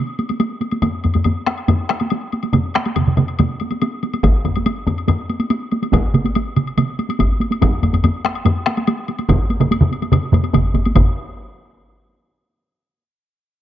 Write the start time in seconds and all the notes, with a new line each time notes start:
0.19 taiko high, high woodblock
0.29 taiko high, high woodblock
0.40 taiko high, high woodblock
0.61 taiko high, high woodblock
0.71 taiko high, high woodblock
0.82 taiko low-mid, taiko high, high woodblock
1.04 taiko low-mid, taiko high, high woodblock
1.14 taiko low-mid, taiko high, high woodblock
1.24 taiko low-mid, taiko high, high woodblock
1.47 taiko rim, taiko high, high woodblock
1.58 high woodblock
1.68 taiko low-mid, taiko high, high woodblock
1.89 taiko rim, taiko high, high woodblock
2.00 taiko high, high woodblock
2.10 taiko high, high woodblock
2.32 taiko high, high woodblock
2.43 taiko high, high woodblock
2.53 taiko low-mid, taiko mid, taiko high, high woodblock
2.74 taiko rim, taiko high, high woodblock
2.85 taiko high, high woodblock
2.96 taiko low-mid, taiko mid, taiko high, high woodblock
3.07 taiko low-mid, taiko mid
3.17 taiko low-mid, taiko mid, taiko high, high woodblock
3.28 high woodblock
3.39 taiko low-mid, taiko mid, taiko high, high woodblock
3.60 taiko high, high woodblock
3.71 taiko high, high woodblock
3.82 taiko high, high woodblock
4.03 taiko high, high woodblock
4.14 taiko high, high woodblock
4.24 taiko, taiko high, high woodblock
4.45 taiko low-mid, taiko high, high woodblock
4.56 taiko high, high woodblock
4.66 taiko high, high woodblock
4.87 taiko low-mid, taiko high, high woodblock
4.98 high woodblock
5.08 taiko low-mid, taiko high, high woodblock
5.30 taiko high, high woodblock
5.40 taiko high, high woodblock
5.50 taiko high, high woodblock
5.72 taiko high, high woodblock
5.83 taiko high, high woodblock
5.93 taiko, taiko high, high woodblock
6.14 taiko mid, taiko high, high woodblock
6.25 taiko high, high woodblock
6.35 taiko high, high woodblock
6.56 taiko mid, taiko high, high woodblock
6.67 high woodblock
6.78 taiko mid, taiko high, high woodblock
6.99 taiko high, high woodblock
7.09 taiko high, high woodblock
7.19 taiko, taiko high, high woodblock
7.40 taiko high, high woodblock
7.51 taiko high, high woodblock
7.62 taiko, taiko low-mid, taiko high, high woodblock
7.83 taiko low-mid, taiko high, high woodblock
7.93 taiko low-mid, taiko high, high woodblock
8.04 taiko low-mid, taiko high, high woodblock
8.24 taiko rim, taiko high, high woodblock
8.35 high woodblock
8.46 taiko low-mid, taiko high, high woodblock
8.66 taiko rim, taiko high, high woodblock
8.77 taiko high, high woodblock
8.87 taiko high, high woodblock
9.08 taiko high, high woodblock
9.19 taiko high, high woodblock
9.29 taiko, taiko low-mid, taiko mid, taiko high, high woodblock
9.50 taiko high, high woodblock
9.60 taiko low-mid, taiko mid, taiko high, high woodblock
9.71 taiko high, high woodblock
9.81 taiko low-mid, taiko mid
9.92 taiko high, high woodblock
10.02 taiko high, high woodblock
10.12 taiko low-mid, taiko mid, taiko high, high woodblock
10.33 taiko low-mid, taiko mid, taiko high, high woodblock
10.44 taiko high, high woodblock
10.54 taiko, taiko low-mid, taiko mid, taiko high, high woodblock
10.75 taiko, taiko high, high woodblock
10.85 taiko high, high woodblock
10.95 taiko, taiko low-mid, taiko mid, taiko high, high woodblock